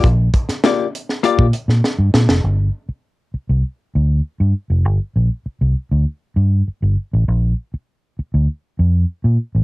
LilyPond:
<<
  \new Staff \with { instrumentName = "Hollow-body jazz guitar" } { \time 4/4 \key g \minor \tempo 4 = 99 r4 <bes f' g' d''>8 r8 <bes f' g' d''>8 r4. | r1 | r1 | r1 | }
  \new Staff \with { instrumentName = "Fingered electric bass" } { \clef bass \time 4/4 \key g \minor bes,,8 r4. r16 bes,16 r16 bes,16 r16 g,16 bes,16 f,,16 | g,,8 r4 r16 c,16 r8 d,8 r16 g,16 r16 f,,16 | g,,16 r16 bes,,16 r8 c,16 r16 d,16 r8 g,8 r16 g,,16 r16 a,,16 | bes,,8 r4 r16 d,16 r8 f,8 r16 bes,16 r16 a,,16 | }
  \new DrumStaff \with { instrumentName = "Drums" } \drummode { \time 4/4 <hh bd>8 <hh bd>16 <hh sn>16 <hh sn>8 hh16 sn16 hh16 bd16 hh16 sn16 sn8 sn16 sn16 | r4 r4 r4 r4 | r4 r4 r4 r4 | r4 r4 r4 r4 | }
>>